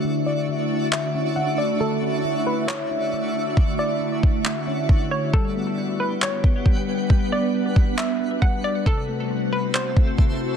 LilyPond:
<<
  \new Staff \with { instrumentName = "Synth pluck" } { \time 4/4 \key d \major \tempo 4 = 136 r8 d''4. e''4 fis''8 d''8 | a'4. b'8 cis''2 | r8 d''4. r4. cis''8 | a'4. b'8 cis''2 |
r8 d''4. e''4 fis''8 d''8 | a'4. b'8 c''2 | }
  \new Staff \with { instrumentName = "Synth texture" } { \time 4/4 \key d \major << { <d' fis' cis'''>1~ | <d' fis' cis'''>1~ | <d' fis' cis'''>1 | <b fis''>1~ |
<b fis''>1 | <c' e''>1 | } \\ { e''1~ | e''1~ | e''1 | g'1 |
fis'1 | a'1 | } >> }
  \new Staff \with { instrumentName = "Ambient pad" } { \time 4/4 \key d \major << { <d a e' e''>1~ | <d a e' e''>1~ | <d a e' e''>1 | <g b d' b'>1~ |
<g b d' b'>1 | <a c' e' c''>1 | } \\ { fis'1~ | fis'1~ | fis'1 | fis''1 |
fis'1~ | fis'1 | } >> }
  \new Staff \with { instrumentName = "Synth keys" } { \clef bass \time 4/4 \key d \major <d d'>8 e'8 d4. cis'8 d4 | d8 cis'8 d4. d'8 d4 | d8 e'8 d4. cis'8 d4 | g8 b8 g4. b8 g4 |
g8 b8 g4. b8 g4 | c8 a8 c4. a8 c4 | }
  \new DrumStaff \with { instrumentName = "Drums" } \drummode { \time 4/4 r4 r4 hc4 r4 | r4 r4 hc4 r4 | bd4 r8 bd8 hc4 bd4 | bd4 r4 hc8 bd8 bd4 |
bd4 r8 bd8 hc4 bd4 | bd4 r4 hc8 bd8 bd4 | }
>>